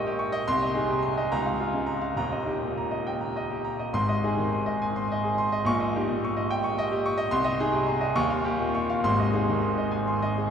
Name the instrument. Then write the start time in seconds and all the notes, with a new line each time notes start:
grand piano
Already playing: A#1 A#3 D#4 G4 D#5 G5 C#6
0.07 G4
0.19 C#6
0.32 D#5
0.48 C2 C6
0.62 D#5
0.74 D#4 G#4
0.89 C3
1.02 C6
1.17 D#5
1.32 C#2 A#5
1.46 F5
1.60 F4
1.74 C#3
1.86 A#5
2.02 F5
2.16 D#1 D#2 A#5
2.32 D#5
2.46 D#4 G4
2.62 A#2
2.77 A#5
2.91 D#5
3.07 G5
3.21 A#5
3.36 D#5
3.50 G4
3.64 A#5
3.79 D#5
3.93 G#1 G#2 C6
4.09 D#5
4.24 D#4 G#4
4.37 D#3
4.52 C6
4.66 D#5
4.82 G#5
4.96 C6
5.12 D#5
5.24 G#4
5.38 C6
5.52 D#5
5.65 A#1 A#2 C#6
5.80 D#5
5.96 D#4 G4
6.10 A#2
6.25 C#6
6.37 D#5
6.51 G5
6.64 C#6
6.78 D#5
6.91 G4
7.06 C#6
7.17 D#5
7.31 C2 C6
7.44 D#5
7.60 D#4 G#4
7.72 C3
7.87 C6
8.01 D#5
8.16 D#2 C#6
8.30 F5
8.45 G4
8.59 A#2
8.75 C#6
8.90 F5
9.04 G#1 G#2 C6
9.19 D#5
9.33 D#4 G#4
9.49 D#3
9.62 C6
9.78 D#5
9.91 G#5
10.08 C6
10.22 D#5
10.38 G#4